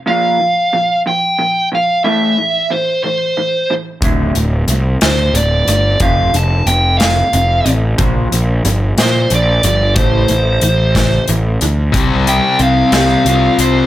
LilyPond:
<<
  \new Staff \with { instrumentName = "Lead electric guitar" } { \time 6/8 \key bes \lydian \tempo 4. = 61 f''4. g''4 f''8 | e''4 c''8 c''4 r8 | r4. c''8 d''8 d''8 | f''8 a''8 g''8 f''4 r8 |
r4. c''8 d''8 d''8 | c''2 r4 | r8 g''8 f''4. c''8 | }
  \new Staff \with { instrumentName = "Distorted electric guitar" } { \clef bass \time 6/8 \key bes \lydian r2. | r2. | r2. | r2. |
r2. | r2. | <c g c'>2 <c g c'>4 | }
  \new Staff \with { instrumentName = "Clean electric guitar" } { \clef bass \time 6/8 \key bes \lydian <bes, f bes>8 <bes, f>8 <bes, f>8 <bes, f>8 <bes, f>8 <bes, f>8 | <a, e a>8 <a, e>8 <a, e>8 <a, e>8 <a, e>8 <a, e>8 | <d, a, d>8 <d, a,>8 <d, a,>8 <d, a,>8 <d, a,>8 <d, a,>8 | <f, c f>8 <f, c>8 <f, c>8 <f, c>8 <f, c>8 <f, c>8 |
<bes, f bes>8 <bes, f>8 <bes, f>8 <bes, f>8 <bes, f>8 <bes, f>8 | <a, e a>8 <a, e>8 <a, e>8 <a, e>8 <a, e>8 <a, e>8 | c8 g8 c'8 g'8 f'8 c''8 | }
  \new Staff \with { instrumentName = "Picked electric bass" } { \clef bass \time 6/8 \key bes \lydian r2. | r2. | d,,8 d,,8 c,8 d,8 d,,8 g,,8 | f,,8 f,,8 f,,4 f,,8 a,,8 |
bes,,8 bes,,8 g,,8 bes,8 bes,,8 g,,8 | a,,8 a,,8 a,,4 a,,8 d,8 | c,4 c,8 c,8 c,8 c,8 | }
  \new DrumStaff \with { instrumentName = "Drums" } \drummode { \time 6/8 r4. r4. | r4. r4. | <hh bd>8 hh8 hh8 <hh sn>8 hh8 hh8 | <hh bd>8 hh8 hh8 <hh sn>8 hh8 hh8 |
<hh bd>8 hh8 hh8 <hh sn>8 hh8 hh8 | <hh bd>8 hh8 hh8 <hh bd sn>8 hh8 hh8 | <hh bd>8 hh8 hh8 <hh sn>8 hh8 hh8 | }
>>